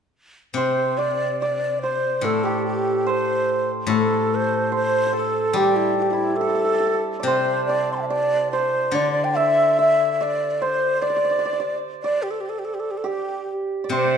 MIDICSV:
0, 0, Header, 1, 5, 480
1, 0, Start_track
1, 0, Tempo, 837989
1, 324, Time_signature, 2, 2, 24, 8
1, 5597, Tempo, 829876
1, 8144, End_track
2, 0, Start_track
2, 0, Title_t, "Hammered dulcimer"
2, 0, Program_c, 0, 15
2, 328, Note_on_c, 0, 72, 57
2, 565, Note_on_c, 0, 74, 57
2, 811, Note_off_c, 0, 74, 0
2, 813, Note_on_c, 0, 74, 59
2, 1049, Note_off_c, 0, 72, 0
2, 1051, Note_on_c, 0, 72, 56
2, 1285, Note_on_c, 0, 69, 62
2, 1404, Note_on_c, 0, 67, 56
2, 1753, Note_off_c, 0, 72, 0
2, 1756, Note_on_c, 0, 72, 68
2, 2223, Note_off_c, 0, 74, 0
2, 2228, Note_off_c, 0, 69, 0
2, 2231, Note_on_c, 0, 69, 66
2, 2701, Note_off_c, 0, 72, 0
2, 2703, Note_on_c, 0, 72, 61
2, 2900, Note_off_c, 0, 72, 0
2, 2902, Note_on_c, 0, 72, 42
2, 2935, Note_off_c, 0, 69, 0
2, 2937, Note_on_c, 0, 69, 54
2, 3182, Note_off_c, 0, 67, 0
2, 3184, Note_on_c, 0, 67, 60
2, 3510, Note_on_c, 0, 64, 49
2, 3668, Note_off_c, 0, 69, 0
2, 3671, Note_on_c, 0, 69, 58
2, 3716, Note_off_c, 0, 69, 0
2, 3718, Note_on_c, 0, 69, 39
2, 3750, Note_off_c, 0, 69, 0
2, 3753, Note_on_c, 0, 69, 51
2, 3806, Note_off_c, 0, 69, 0
2, 3808, Note_on_c, 0, 69, 44
2, 3858, Note_off_c, 0, 69, 0
2, 3860, Note_on_c, 0, 69, 52
2, 3894, Note_off_c, 0, 69, 0
2, 3896, Note_on_c, 0, 69, 43
2, 3930, Note_off_c, 0, 69, 0
2, 3932, Note_on_c, 0, 69, 44
2, 3972, Note_off_c, 0, 69, 0
2, 3974, Note_on_c, 0, 69, 39
2, 4122, Note_on_c, 0, 74, 48
2, 4164, Note_off_c, 0, 72, 0
2, 4166, Note_on_c, 0, 72, 65
2, 4404, Note_off_c, 0, 74, 0
2, 4407, Note_on_c, 0, 74, 59
2, 4639, Note_off_c, 0, 74, 0
2, 4641, Note_on_c, 0, 74, 61
2, 4884, Note_off_c, 0, 72, 0
2, 4886, Note_on_c, 0, 72, 66
2, 4981, Note_off_c, 0, 67, 0
2, 5123, Note_off_c, 0, 74, 0
2, 5125, Note_on_c, 0, 74, 74
2, 5364, Note_on_c, 0, 76, 70
2, 5500, Note_off_c, 0, 64, 0
2, 5604, Note_off_c, 0, 76, 0
2, 5606, Note_on_c, 0, 76, 67
2, 5649, Note_off_c, 0, 69, 0
2, 5847, Note_off_c, 0, 74, 0
2, 5849, Note_on_c, 0, 74, 64
2, 6083, Note_off_c, 0, 72, 0
2, 6086, Note_on_c, 0, 72, 68
2, 6318, Note_off_c, 0, 74, 0
2, 6320, Note_on_c, 0, 74, 68
2, 6362, Note_off_c, 0, 74, 0
2, 6364, Note_on_c, 0, 74, 45
2, 6401, Note_off_c, 0, 74, 0
2, 6403, Note_on_c, 0, 74, 51
2, 6448, Note_off_c, 0, 74, 0
2, 6450, Note_on_c, 0, 74, 44
2, 6485, Note_off_c, 0, 74, 0
2, 6487, Note_on_c, 0, 74, 49
2, 6530, Note_off_c, 0, 74, 0
2, 6532, Note_on_c, 0, 74, 46
2, 6568, Note_off_c, 0, 74, 0
2, 6570, Note_on_c, 0, 74, 50
2, 6611, Note_off_c, 0, 74, 0
2, 6613, Note_on_c, 0, 74, 44
2, 6651, Note_off_c, 0, 74, 0
2, 6654, Note_on_c, 0, 74, 54
2, 6907, Note_off_c, 0, 74, 0
2, 6910, Note_on_c, 0, 74, 60
2, 6932, Note_off_c, 0, 76, 0
2, 7487, Note_on_c, 0, 67, 63
2, 7613, Note_off_c, 0, 72, 0
2, 7948, Note_off_c, 0, 74, 0
2, 7951, Note_on_c, 0, 74, 48
2, 7998, Note_on_c, 0, 72, 66
2, 8144, Note_off_c, 0, 67, 0
2, 8144, Note_off_c, 0, 72, 0
2, 8144, Note_off_c, 0, 74, 0
2, 8144, End_track
3, 0, Start_track
3, 0, Title_t, "Xiao"
3, 0, Program_c, 1, 77
3, 314, Note_on_c, 1, 72, 67
3, 559, Note_on_c, 1, 74, 72
3, 568, Note_off_c, 1, 72, 0
3, 797, Note_off_c, 1, 74, 0
3, 800, Note_on_c, 1, 74, 67
3, 1026, Note_off_c, 1, 74, 0
3, 1040, Note_on_c, 1, 72, 71
3, 1286, Note_on_c, 1, 69, 69
3, 1294, Note_off_c, 1, 72, 0
3, 1396, Note_on_c, 1, 67, 71
3, 1405, Note_off_c, 1, 69, 0
3, 1517, Note_off_c, 1, 67, 0
3, 1520, Note_on_c, 1, 67, 69
3, 1773, Note_on_c, 1, 72, 74
3, 1782, Note_off_c, 1, 67, 0
3, 2122, Note_off_c, 1, 72, 0
3, 2258, Note_on_c, 1, 69, 69
3, 2490, Note_on_c, 1, 72, 78
3, 2498, Note_off_c, 1, 69, 0
3, 2719, Note_off_c, 1, 72, 0
3, 2722, Note_on_c, 1, 72, 77
3, 2938, Note_off_c, 1, 72, 0
3, 2955, Note_on_c, 1, 69, 72
3, 3192, Note_on_c, 1, 67, 73
3, 3201, Note_off_c, 1, 69, 0
3, 3301, Note_on_c, 1, 64, 65
3, 3310, Note_off_c, 1, 67, 0
3, 3420, Note_off_c, 1, 64, 0
3, 3424, Note_on_c, 1, 64, 63
3, 3449, Note_on_c, 1, 67, 50
3, 3458, Note_off_c, 1, 64, 0
3, 3499, Note_on_c, 1, 64, 63
3, 3507, Note_off_c, 1, 67, 0
3, 3645, Note_on_c, 1, 69, 68
3, 3654, Note_off_c, 1, 64, 0
3, 4023, Note_off_c, 1, 69, 0
3, 4144, Note_on_c, 1, 72, 77
3, 4376, Note_off_c, 1, 72, 0
3, 4386, Note_on_c, 1, 74, 80
3, 4536, Note_off_c, 1, 74, 0
3, 4539, Note_on_c, 1, 84, 31
3, 4551, Note_off_c, 1, 84, 0
3, 4552, Note_on_c, 1, 81, 35
3, 4564, Note_off_c, 1, 81, 0
3, 4567, Note_on_c, 1, 79, 37
3, 4589, Note_off_c, 1, 79, 0
3, 4592, Note_on_c, 1, 76, 42
3, 4627, Note_off_c, 1, 76, 0
3, 4630, Note_on_c, 1, 74, 83
3, 4858, Note_off_c, 1, 74, 0
3, 4877, Note_on_c, 1, 72, 74
3, 5124, Note_on_c, 1, 74, 78
3, 5133, Note_off_c, 1, 72, 0
3, 5294, Note_on_c, 1, 79, 68
3, 5302, Note_off_c, 1, 74, 0
3, 5364, Note_on_c, 1, 76, 79
3, 5373, Note_off_c, 1, 79, 0
3, 5601, Note_off_c, 1, 76, 0
3, 5616, Note_on_c, 1, 76, 86
3, 5794, Note_off_c, 1, 76, 0
3, 5794, Note_on_c, 1, 76, 68
3, 5860, Note_on_c, 1, 74, 81
3, 5869, Note_off_c, 1, 76, 0
3, 6024, Note_off_c, 1, 74, 0
3, 6024, Note_on_c, 1, 74, 71
3, 6089, Note_on_c, 1, 72, 84
3, 6098, Note_off_c, 1, 74, 0
3, 6318, Note_on_c, 1, 74, 85
3, 6327, Note_off_c, 1, 72, 0
3, 6757, Note_off_c, 1, 74, 0
3, 6903, Note_on_c, 1, 74, 75
3, 7016, Note_on_c, 1, 67, 49
3, 7025, Note_off_c, 1, 74, 0
3, 7063, Note_on_c, 1, 69, 57
3, 7072, Note_off_c, 1, 67, 0
3, 7121, Note_on_c, 1, 67, 53
3, 7130, Note_off_c, 1, 69, 0
3, 7171, Note_on_c, 1, 69, 55
3, 7180, Note_off_c, 1, 67, 0
3, 7226, Note_on_c, 1, 67, 52
3, 7235, Note_off_c, 1, 69, 0
3, 7261, Note_on_c, 1, 69, 58
3, 7269, Note_off_c, 1, 67, 0
3, 7315, Note_on_c, 1, 67, 55
3, 7324, Note_off_c, 1, 69, 0
3, 7347, Note_on_c, 1, 69, 57
3, 7356, Note_off_c, 1, 67, 0
3, 7412, Note_on_c, 1, 67, 47
3, 7420, Note_off_c, 1, 69, 0
3, 7450, Note_on_c, 1, 69, 50
3, 7458, Note_off_c, 1, 67, 0
3, 7502, Note_on_c, 1, 67, 59
3, 7511, Note_off_c, 1, 69, 0
3, 7761, Note_off_c, 1, 67, 0
3, 8016, Note_on_c, 1, 72, 73
3, 8144, Note_off_c, 1, 72, 0
3, 8144, End_track
4, 0, Start_track
4, 0, Title_t, "Cello"
4, 0, Program_c, 2, 42
4, 7996, Note_on_c, 2, 48, 77
4, 8144, Note_off_c, 2, 48, 0
4, 8144, End_track
5, 0, Start_track
5, 0, Title_t, "Guzheng"
5, 0, Program_c, 3, 107
5, 308, Note_on_c, 3, 48, 46
5, 1268, Note_on_c, 3, 45, 47
5, 1278, Note_off_c, 3, 48, 0
5, 2207, Note_off_c, 3, 45, 0
5, 2214, Note_on_c, 3, 45, 50
5, 3170, Note_on_c, 3, 55, 48
5, 3660, Note_off_c, 3, 45, 0
5, 4143, Note_on_c, 3, 48, 48
5, 4632, Note_off_c, 3, 55, 0
5, 5106, Note_on_c, 3, 50, 49
5, 5112, Note_off_c, 3, 48, 0
5, 6541, Note_off_c, 3, 50, 0
5, 7982, Note_on_c, 3, 48, 50
5, 8144, Note_off_c, 3, 48, 0
5, 8144, End_track
0, 0, End_of_file